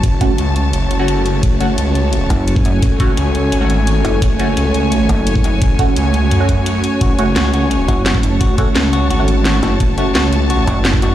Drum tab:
HH |x-x-x-x-x-x-x-x-|x-x-x-x-x-x-x-x-|x-x-x-x-x-x-x-x-|x-x-x-x-x-x-x-x-|
SD |----------------|----------------|----------------|----------------|
BD |o-o-------------|o---------o--o--|o-o-------------|o---------o--o--|

HH |x-x-x-x-x-x-x-x-|x-x-x-x-x-x-x-x-|x-x-x-x-x-x-x-x-|x-x-x-x-x-x-x-x-|
SD |----------------|----o-------o---|----o-------o-o-|----o-------o---|
BD |o-o-------o-----|o---------o--o--|o-o-------------|o---------o--o--|